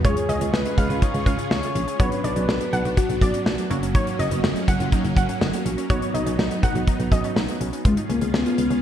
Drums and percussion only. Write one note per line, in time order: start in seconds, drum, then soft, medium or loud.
0.05 kick loud
0.05 closed hi-hat medium
0.17 closed hi-hat medium
0.29 closed hi-hat medium
0.41 closed hi-hat medium
0.54 snare loud
0.66 closed hi-hat soft
0.78 kick medium
0.78 closed hi-hat medium
0.90 closed hi-hat soft
1.02 kick loud
1.02 closed hi-hat medium
1.14 closed hi-hat soft
1.26 kick medium
1.26 closed hi-hat medium
1.39 closed hi-hat medium
1.51 snare loud
1.63 closed hi-hat medium
1.76 closed hi-hat medium
1.88 closed hi-hat medium
2.00 kick loud
2.00 closed hi-hat medium
2.12 closed hi-hat medium
2.24 closed hi-hat medium
2.36 closed hi-hat medium
2.49 snare loud
2.61 closed hi-hat soft
2.73 closed hi-hat medium
2.85 closed hi-hat soft
2.97 kick loud
2.97 closed hi-hat medium
3.10 closed hi-hat soft
3.21 kick loud
3.21 closed hi-hat medium
3.34 closed hi-hat medium
3.46 snare loud
3.58 closed hi-hat medium
3.71 closed hi-hat medium
3.83 closed hi-hat medium
3.95 kick loud
3.95 closed hi-hat medium
4.07 closed hi-hat medium
4.20 closed hi-hat medium
4.31 closed hi-hat medium
4.44 snare loud
4.56 closed hi-hat soft
4.68 kick medium
4.68 closed hi-hat medium
4.80 closed hi-hat soft
4.92 kick medium
4.92 closed hi-hat medium
5.05 closed hi-hat soft
5.17 kick loud
5.17 closed hi-hat medium
5.29 closed hi-hat medium
5.41 snare loud
5.53 closed hi-hat medium
5.66 closed hi-hat medium
5.78 closed hi-hat medium
5.90 kick loud
5.90 closed hi-hat medium
6.02 closed hi-hat medium
6.15 closed hi-hat medium
6.26 closed hi-hat medium
6.39 snare loud
6.51 closed hi-hat medium
6.63 kick medium
6.63 closed hi-hat medium
6.75 closed hi-hat soft
6.87 kick medium
6.87 closed hi-hat medium
7.00 closed hi-hat soft
7.12 kick medium
7.12 closed hi-hat medium
7.24 closed hi-hat medium
7.36 snare loud
7.48 closed hi-hat medium
7.61 closed hi-hat medium
7.73 closed hi-hat medium
7.85 kick loud
7.85 closed hi-hat medium
7.97 closed hi-hat medium
8.10 closed hi-hat medium
8.21 closed hi-hat medium
8.34 snare loud
8.46 closed hi-hat soft
8.58 closed hi-hat medium
8.70 closed hi-hat soft